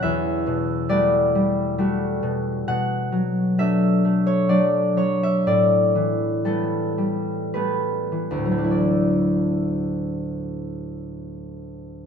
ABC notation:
X:1
M:3/4
L:1/16
Q:1/4=61
K:D
V:1 name="Harp"
[de]4 d8 | f4 e3 c d2 c e | d4 A4 B4 | [D,,A,,F,A,DEd]12 |]
V:2 name="Harp" clef=bass
[E,,F]2 B,,2 [G,A,F]2 G,2 [G,A,F]2 B,,2 | B,,2 F,2 [F,A,D]2 A,2 [F,A,D]2 F,2 | A,,2 E,2 [G,A,B,]2 G,2 [G,A,B,]2 E,2 | z12 |]